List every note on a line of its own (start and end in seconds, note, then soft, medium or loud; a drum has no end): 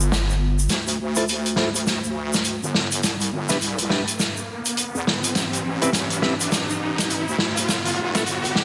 0.00 0.68 G1 medium
0.00 0.67 B3 medium
0.00 0.67 E4 medium
0.00 0.67 F4 medium
0.00 0.67 A4 medium
0.00 shaker medium
0.12 snare loud
0.12 shaker medium
0.30 shaker soft
0.59 shaker medium
0.69 0.97 D2 medium
0.69 snare soft
0.69 closed hi-hat medium
0.69 riser medium
0.69 shaker medium
0.87 closed hi-hat medium
0.87 shaker soft
0.99 1.56 D2 medium
1.16 1.24 E4 medium
1.16 1.24 F4 medium
1.16 1.23 A4 medium
1.16 1.24 C5 medium
1.16 closed hi-hat medium
1.16 shaker medium
1.28 closed hi-hat medium
1.28 shaker medium
1.46 closed hi-hat medium
1.46 shaker soft
1.56 2.01 D2 medium
1.56 1.68 E4 medium
1.56 1.68 F4 soft
1.56 1.68 A4 medium
1.56 1.68 C5 medium
1.56 snare soft
1.75 closed hi-hat medium
1.75 shaker medium
1.87 snare soft
1.87 closed hi-hat medium
1.87 shaker medium
2.04 2.60 D2 loud
2.04 shaker soft
2.33 snare soft
2.33 closed hi-hat medium
2.33 shaker medium
2.44 closed hi-hat medium
2.44 shaker medium
2.62 3.01 G1 medium
2.62 shaker soft
2.74 snare medium
2.92 closed hi-hat medium
2.92 shaker medium
3.03 3.30 C2 loud
3.03 snare medium
3.03 closed hi-hat medium
3.03 shaker medium
3.21 closed hi-hat medium
3.21 shaker soft
3.32 3.59 G1 medium
3.49 3.56 D4 medium
3.49 3.56 E4 medium
3.49 3.57 G4 medium
3.49 3.57 B4 medium
3.49 snare soft
3.49 closed hi-hat medium
3.49 shaker medium
3.61 4.05 C2 loud
3.61 closed hi-hat medium
3.61 shaker medium
3.78 closed hi-hat medium
3.78 shaker soft
3.90 4.01 D4 medium
3.90 4.01 E4 medium
3.90 4.01 G4 medium
3.90 4.01 B4 medium
3.90 snare medium
4.07 closed hi-hat medium
4.07 shaker medium
4.19 snare soft
4.19 closed hi-hat medium
4.19 shaker medium
4.37 shaker soft
4.65 closed hi-hat medium
4.65 shaker medium
4.77 closed hi-hat medium
4.77 shaker medium
4.95 5.05 E2 loud
4.95 shaker soft
5.06 5.34 G1 medium
5.06 snare medium
5.24 closed hi-hat medium
5.24 shaker medium
5.35 5.63 A1 loud
5.35 snare medium
5.35 closed hi-hat medium
5.35 shaker medium
5.53 closed hi-hat medium
5.53 shaker soft
5.64 6.21 A1 medium
5.82 5.89 C4 medium
5.82 5.89 E4 medium
5.82 5.89 G4 medium
5.82 5.89 B4 medium
5.82 closed hi-hat medium
5.82 shaker medium
5.93 snare medium
5.93 closed hi-hat medium
5.93 shaker medium
6.10 closed hi-hat medium
6.10 shaker soft
6.22 6.67 A1 loud
6.22 6.34 C4 medium
6.22 6.34 E4 medium
6.22 6.34 G4 medium
6.22 6.34 B4 medium
6.22 snare medium
6.41 closed hi-hat medium
6.41 shaker medium
6.52 snare medium
6.52 closed hi-hat medium
6.52 shaker medium
6.70 7.25 A1 loud
6.70 shaker soft
6.98 snare medium
6.98 closed hi-hat medium
6.98 shaker medium
7.10 closed hi-hat medium
7.10 shaker medium
7.28 7.67 D2 loud
7.28 shaker soft
7.38 snare medium
7.57 closed hi-hat medium
7.57 shaker medium
7.68 7.96 G1 loud
7.68 snare medium
7.68 closed hi-hat medium
7.68 shaker medium
7.85 closed hi-hat soft
7.85 shaker soft
7.87 closed hi-hat soft
7.91 closed hi-hat soft
7.93 closed hi-hat soft
7.98 8.25 F1 medium
8.15 8.22 B3 medium
8.15 8.22 E4 medium
8.15 8.22 F4 medium
8.15 8.22 A4 medium
8.15 snare medium
8.15 closed hi-hat medium
8.15 shaker medium
8.26 8.64 G1 loud
8.26 closed hi-hat medium
8.26 shaker medium
8.45 closed hi-hat medium
8.45 shaker soft
8.55 snare medium